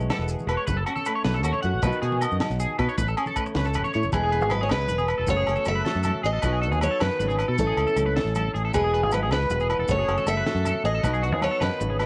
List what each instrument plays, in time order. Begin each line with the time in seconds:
Already playing: nylon-string guitar G#3 E4
0.00 low conga, maracas
0.10 nylon-string guitar E3 B3, clean electric guitar A4, snare, closed hi-hat, high conga, low conga, low agogo
0.19 fingered electric bass E1
0.28 closed hi-hat, maracas
0.39 low conga, maracas
0.47 fingered electric bass E1, clean electric guitar B4, nylon-string guitar B4, closed hi-hat, low agogo
0.57 clean electric guitar C#5
0.67 fingered electric bass F#1, nylon-string guitar F#2, clean electric guitar B4, kick, closed hi-hat, high conga, low conga, maracas
0.77 clean electric guitar A4
0.86 nylon-string guitar C#4, clean electric guitar F#4, closed hi-hat, low conga, low agogo
0.95 clean electric guitar A4, low conga, maracas
1.05 nylon-string guitar A3, clean electric guitar B4, closed hi-hat, low agogo, maracas
1.15 clean electric guitar C#5
1.25 fingered electric bass B1, nylon-string guitar F#3 C#4, clean electric guitar B4, snare, closed hi-hat, high conga, low conga, maracas
1.34 clean electric guitar A4
1.43 fingered electric bass D#2, clean electric guitar F#4, closed hi-hat, low agogo, maracas
1.53 clean electric guitar C#5, low conga
1.63 fingered electric bass F#2, nylon-string guitar F#4, clean electric guitar F#5, closed hi-hat, maracas
1.74 fingered electric bass A1
1.82 fingered electric bass B1, nylon-string guitar B2 D#3 B3 D#4, clean electric guitar B4, kick, closed hi-hat, high conga, low conga, low agogo, maracas
1.87 nylon-string guitar F#4
1.92 maracas
2.02 fingered electric bass B2, nylon-string guitar D#4, clean electric guitar G#4, closed hi-hat
2.12 low conga
2.21 nylon-string guitar B3, clean electric guitar D#5, closed hi-hat, low agogo, maracas
2.31 fingered electric bass F#2, low conga, maracas
2.40 nylon-string guitar D#3 D#4, snare, closed hi-hat, high conga, low conga, low agogo
2.50 fingered electric bass B1, maracas
2.60 clean electric guitar G#4, closed hi-hat, low conga, maracas
2.69 low conga
2.78 fingered electric bass B2, nylon-string guitar F#4, clean electric guitar B4, kick, closed hi-hat, low agogo
2.89 clean electric guitar C#5, maracas
2.98 fingered electric bass A1, nylon-string guitar A2, clean electric guitar B4, kick, closed hi-hat, high conga, low conga, maracas
3.08 clean electric guitar A4, maracas
3.17 nylon-string guitar C#4, clean electric guitar G#4, closed hi-hat, low agogo, maracas
3.26 clean electric guitar A4, low conga, maracas
3.36 nylon-string guitar A3, clean electric guitar B4, kick, closed hi-hat, low agogo, maracas
3.46 muted clean electric guitar stroke, low conga, maracas
3.54 fingered electric bass C#2, nylon-string guitar E3 C#4, clean electric guitar B4, snare, closed hi-hat, high conga, low conga
3.65 clean electric guitar A4, maracas
3.74 fingered electric bass F#1, clean electric guitar B4, closed hi-hat, low agogo, maracas
3.84 clean electric guitar C#5, low conga, maracas
3.93 fingered electric bass A2, nylon-string guitar E4, clean electric guitar C#5, closed hi-hat, maracas
4.03 fingered electric bass F1, maracas
4.12 fingered electric bass E1, nylon-string guitar E2 G#3 B3, steel-string acoustic guitar G#4, clean electric guitar B4, kick, closed hi-hat, high conga, low conga, low agogo, maracas
4.24 clean electric guitar G#4
4.32 nylon-string guitar B3, clean electric guitar B4, closed hi-hat
4.42 fingered electric bass G#1, clean electric guitar G#4, maracas
4.50 nylon-string guitar G#3, steel-string acoustic guitar B4, closed hi-hat, high conga, low agogo
4.61 clean electric guitar G#4, steel-string acoustic guitar C#5
4.70 fingered electric bass C#2, nylon-string guitar E3 G#4, clean electric guitar B4, steel-string acoustic guitar B4, snare, closed hi-hat, low conga, low agogo
4.88 fingered electric bass E1, clean electric guitar B4, closed hi-hat, high conga, maracas
4.98 clean electric guitar G#4, low conga, maracas
5.08 clean electric guitar B4, closed hi-hat, low agogo
5.18 fingered electric bass E1, clean electric guitar A4, low conga
5.27 fingered electric bass F#1, nylon-string guitar F#2 A3 C#4 F#4, steel-string acoustic guitar C#5, kick, closed hi-hat, high conga, low conga, maracas
5.37 clean electric guitar G#4
5.47 fingered electric bass F#1, nylon-string guitar C#4, closed hi-hat, low agogo
5.56 clean electric guitar A4, low conga, maracas
5.65 fingered electric bass F#1, nylon-string guitar A3, steel-string acoustic guitar E5, closed hi-hat, high conga, low conga, low agogo, maracas
5.75 clean electric guitar B4, low conga
5.85 nylon-string guitar F#3 F#4, clean electric guitar A4, snare, closed hi-hat, low conga, maracas
5.95 fingered electric bass F#2
6.03 clean electric guitar A4, closed hi-hat, high conga, low agogo, maracas
6.15 low conga
6.23 fingered electric bass A1, clean electric guitar G#4, steel-string acoustic guitar D#5, closed hi-hat
6.33 clean electric guitar A4
6.42 fingered electric bass B1, nylon-string guitar B2 B3 D#4 F#4, clean electric guitar B4, kick, closed hi-hat, high conga, low conga, low agogo, maracas
6.53 clean electric guitar G#4
6.62 nylon-string guitar D#4, clean electric guitar A4, closed hi-hat
6.71 fingered electric bass D#2, clean electric guitar G#4, low conga, maracas
6.81 nylon-string guitar B3, clean electric guitar B4, steel-string acoustic guitar C#5, closed hi-hat, high conga, low agogo, maracas
6.91 clean electric guitar A4
7.00 fingered electric bass F#2, nylon-string guitar D#3, clean electric guitar B4, steel-string acoustic guitar B4, snare, closed hi-hat, low conga, low agogo
7.11 low conga
7.19 fingered electric bass G#1, nylon-string guitar C#3, clean electric guitar B4, closed hi-hat, high conga, maracas
7.28 clean electric guitar G#4, low conga, maracas
7.38 clean electric guitar B4, closed hi-hat, low agogo
7.48 fingered electric bass B2, clean electric guitar A4, low conga
7.58 fingered electric bass A1, nylon-string guitar A2 A3 C#4 E4, steel-string acoustic guitar A4, kick, closed hi-hat, high conga, low conga, maracas
7.67 clean electric guitar G#4
7.77 fingered electric bass C#2, nylon-string guitar C#4, closed hi-hat, low agogo
7.87 clean electric guitar A4, low conga, maracas
7.96 fingered electric bass C#2, nylon-string guitar A3, closed hi-hat, high conga, low conga, low agogo, maracas
8.06 clean electric guitar B4, low conga
8.16 nylon-string guitar E3 E4, clean electric guitar A4, snare, closed hi-hat, low conga, maracas
8.25 fingered electric bass A1
8.35 clean electric guitar A4, closed hi-hat, high conga, low agogo, maracas
8.47 low conga
8.54 fingered electric bass A1, clean electric guitar G#4, closed hi-hat
8.65 clean electric guitar A4
8.73 fingered electric bass E1, nylon-string guitar E2 G#3 B3, steel-string acoustic guitar G#4, clean electric guitar B4, kick, closed hi-hat, high conga, low conga, low agogo, maracas
8.84 clean electric guitar G#4
8.94 nylon-string guitar B3, clean electric guitar B4, closed hi-hat
9.03 fingered electric bass G#1, clean electric guitar G#4, low conga
9.11 nylon-string guitar G#3, steel-string acoustic guitar B4, clean electric guitar B4, closed hi-hat, high conga, low agogo, maracas
9.22 clean electric guitar G#4
9.31 fingered electric bass C#2, clean electric guitar B4, steel-string acoustic guitar B4, snare, closed hi-hat, low conga, low agogo
9.50 fingered electric bass E1, clean electric guitar B4, closed hi-hat, high conga, maracas
9.60 clean electric guitar G#4, low conga, maracas
9.69 nylon-string guitar E2, clean electric guitar B4, closed hi-hat, low agogo
9.79 fingered electric bass E1, clean electric guitar A4, low conga
9.88 fingered electric bass F#1, nylon-string guitar F#2 A3 C#4 F#4, steel-string acoustic guitar C#5, kick, closed hi-hat, high conga, low conga, maracas
9.98 clean electric guitar G#4, low conga
10.08 fingered electric bass F#1, nylon-string guitar C#4, closed hi-hat, low agogo
10.17 clean electric guitar A4, low conga, maracas
10.26 fingered electric bass F#1, nylon-string guitar A3, steel-string acoustic guitar E5, closed hi-hat, high conga, low conga, low agogo, maracas
10.37 clean electric guitar B4, low conga
10.46 nylon-string guitar F#3 F#4, clean electric guitar A4, snare, closed hi-hat, low conga, maracas
10.54 fingered electric bass F#2
10.65 clean electric guitar A4, closed hi-hat, high conga, low agogo, maracas
10.74 low conga
10.84 fingered electric bass A1, clean electric guitar G#4, steel-string acoustic guitar D#5, closed hi-hat
10.95 clean electric guitar A4
11.03 fingered electric bass B1, nylon-string guitar B2 B3 D#4 F#4, clean electric guitar B4, kick, closed hi-hat, high conga, low conga, low agogo, maracas
11.13 clean electric guitar G#4, maracas
11.22 nylon-string guitar D#4, clean electric guitar F#4, closed hi-hat
11.32 fingered electric bass D#2, clean electric guitar G#4
11.41 nylon-string guitar B3, clean electric guitar B4, steel-string acoustic guitar C#5, closed hi-hat, high conga, low conga, low agogo
11.51 clean electric guitar A4, low conga
11.60 fingered electric bass F#2, nylon-string guitar D#3, clean electric guitar B4, steel-string acoustic guitar B4, snare, closed hi-hat, low conga, low agogo, maracas
11.80 fingered electric bass G#1, nylon-string guitar C#3, muted clean electric guitar stroke, closed hi-hat, high conga, maracas
11.90 clean electric guitar G#4, low conga
11.99 nylon-string guitar B2, clean electric guitar B4, snare, closed hi-hat, low agogo, maracas